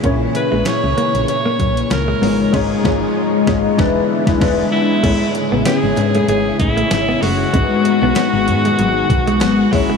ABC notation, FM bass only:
X:1
M:4/4
L:1/16
Q:"Swing 16ths" 1/4=96
K:Elyd
V:1 name="FM bass" clef=bass
A,,,2 z A,,, z C,, z A,,, z2 A,,,2 C,,2 G,,,2 | G,,,2 G,,,2 z2 G,,,2 E,,,2 z E,,, E,,,2 z2 | [K:G#phr] G,,, z2 A,,, z G,,, G,,2 G,,,2 A,,,2 G,,,2 F,,,2 | G,,, z2 B,,, z G,,, G,,2 G,,,2 B,,,2 G,,,2 G,,,2 |]